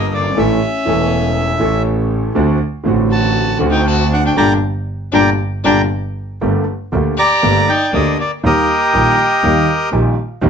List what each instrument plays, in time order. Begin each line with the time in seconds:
Already playing: double bass G1, grand piano G1 G2 G3 A#3 D4 A4, violin A#3, bandoneon D#5
0.12 double bass G1, violin A#3, bandoneon D5
0.19 grand piano F#1
0.24 grand piano G1
0.30 grand piano G#1
0.37 double bass A1, grand piano A1 A2 E3 A3 C#4 A4, violin C#4, bandoneon E5
0.85 grand piano E1 E2 E3 A3 C#4 A4, double bass E1
1.59 grand piano A1 A2 E3 A3 C#4 A4, double bass A1
2.35 grand piano D2 D3 A3 C4 F#4, double bass D2
2.84 grand piano A1 A2 D3 A3 C4 F#4, double bass A1
3.12 violin F#4, bandoneon A5
3.59 grand piano D2 D3 A3 C4 F#4, double bass D2
3.70 violin D#4, bandoneon G5
3.87 violin F#4, bandoneon A5
4.12 violin D4, bandoneon F#5
4.25 violin D4, bandoneon G5
4.36 double bass G1, grand piano A#2 D3 G3, violin D4, bandoneon D5 G5 A#5
5.12 double bass G1, grand piano A#2 D3 G3, violin D4, bandoneon D5 G5 A#5
5.64 double bass G1, grand piano A#2 D3 G3, violin D4, bandoneon D5 G5 A#5
6.41 grand piano G1 G2 D3 A3 A#3 G4, double bass G1
6.92 grand piano D2 D3 A3 A#3 G4, double bass D2
7.17 violin G4, bandoneon D5 A#5
7.43 grand piano G1 G2 D3 A3 A#3 G4, double bass G1
7.68 violin D#4, bandoneon G5
7.92 double bass D2, grand piano D2 D3 A3 A#3 G4, violin A#3, bandoneon D#5
8.19 violin A#3, bandoneon D5
8.43 double bass D#2, grand piano D#2 D#3 G3 A#3 G4, violin A#3, bandoneon G4 A#4 D#5
8.94 double bass A#1, grand piano A#1 A#2 D#3 G3 A#3 G4
9.44 double bass D#2, grand piano D#2 D#3 G3 A#3 G4
9.92 grand piano A#1 A#2 D#3 G3 A#3 G4, double bass A#1
10.41 grand piano D#2 D#3 G3 C4 G4, double bass D#2